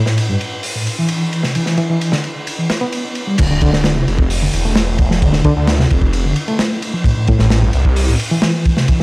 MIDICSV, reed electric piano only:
0, 0, Header, 1, 2, 480
1, 0, Start_track
1, 0, Tempo, 458015
1, 1629, Time_signature, 4, 2, 24, 8
1, 9462, End_track
2, 0, Start_track
2, 0, Title_t, "Reed electric piano"
2, 0, Program_c, 0, 4
2, 66, Note_on_c, 0, 45, 72
2, 295, Note_off_c, 0, 45, 0
2, 309, Note_on_c, 0, 43, 98
2, 399, Note_off_c, 0, 43, 0
2, 796, Note_on_c, 0, 45, 73
2, 906, Note_off_c, 0, 45, 0
2, 1034, Note_on_c, 0, 52, 96
2, 1499, Note_off_c, 0, 52, 0
2, 1509, Note_on_c, 0, 48, 72
2, 1599, Note_off_c, 0, 48, 0
2, 1630, Note_on_c, 0, 52, 76
2, 1719, Note_off_c, 0, 52, 0
2, 1745, Note_on_c, 0, 52, 72
2, 1851, Note_off_c, 0, 52, 0
2, 1864, Note_on_c, 0, 52, 96
2, 1956, Note_off_c, 0, 52, 0
2, 1989, Note_on_c, 0, 52, 75
2, 2217, Note_off_c, 0, 52, 0
2, 2226, Note_on_c, 0, 50, 97
2, 2317, Note_off_c, 0, 50, 0
2, 2708, Note_on_c, 0, 52, 70
2, 2822, Note_off_c, 0, 52, 0
2, 2946, Note_on_c, 0, 59, 97
2, 3415, Note_off_c, 0, 59, 0
2, 3428, Note_on_c, 0, 55, 70
2, 3518, Note_off_c, 0, 55, 0
2, 3548, Note_on_c, 0, 50, 85
2, 3638, Note_off_c, 0, 50, 0
2, 3672, Note_on_c, 0, 50, 77
2, 3784, Note_off_c, 0, 50, 0
2, 3796, Note_on_c, 0, 50, 98
2, 3882, Note_off_c, 0, 50, 0
2, 3914, Note_on_c, 0, 50, 81
2, 4139, Note_off_c, 0, 50, 0
2, 4149, Note_on_c, 0, 48, 99
2, 4238, Note_off_c, 0, 48, 0
2, 4634, Note_on_c, 0, 50, 77
2, 4745, Note_off_c, 0, 50, 0
2, 4875, Note_on_c, 0, 57, 103
2, 5340, Note_off_c, 0, 57, 0
2, 5348, Note_on_c, 0, 53, 77
2, 5438, Note_off_c, 0, 53, 0
2, 5471, Note_on_c, 0, 50, 83
2, 5560, Note_off_c, 0, 50, 0
2, 5584, Note_on_c, 0, 50, 79
2, 5694, Note_off_c, 0, 50, 0
2, 5707, Note_on_c, 0, 50, 103
2, 5798, Note_off_c, 0, 50, 0
2, 5829, Note_on_c, 0, 50, 78
2, 6057, Note_off_c, 0, 50, 0
2, 6065, Note_on_c, 0, 48, 103
2, 6157, Note_off_c, 0, 48, 0
2, 6550, Note_on_c, 0, 50, 79
2, 6663, Note_off_c, 0, 50, 0
2, 6790, Note_on_c, 0, 57, 104
2, 7257, Note_off_c, 0, 57, 0
2, 7269, Note_on_c, 0, 53, 77
2, 7359, Note_off_c, 0, 53, 0
2, 7388, Note_on_c, 0, 45, 83
2, 7478, Note_off_c, 0, 45, 0
2, 7512, Note_on_c, 0, 45, 78
2, 7618, Note_off_c, 0, 45, 0
2, 7630, Note_on_c, 0, 45, 105
2, 7719, Note_off_c, 0, 45, 0
2, 7751, Note_on_c, 0, 45, 78
2, 7978, Note_off_c, 0, 45, 0
2, 7987, Note_on_c, 0, 43, 105
2, 8078, Note_off_c, 0, 43, 0
2, 8475, Note_on_c, 0, 45, 78
2, 8586, Note_off_c, 0, 45, 0
2, 8712, Note_on_c, 0, 52, 99
2, 9178, Note_off_c, 0, 52, 0
2, 9190, Note_on_c, 0, 48, 77
2, 9279, Note_off_c, 0, 48, 0
2, 9311, Note_on_c, 0, 52, 84
2, 9400, Note_off_c, 0, 52, 0
2, 9430, Note_on_c, 0, 52, 79
2, 9462, Note_off_c, 0, 52, 0
2, 9462, End_track
0, 0, End_of_file